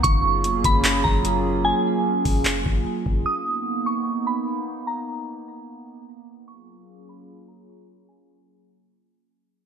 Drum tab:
HH |x-xxx-x-|---o----|--------|--------|
CP |----x---|----x---|--------|--------|
BD |o--o-o--|---o-o-o|--------|--------|

HH |--------|--------|
CP |--------|--------|
BD |--------|--------|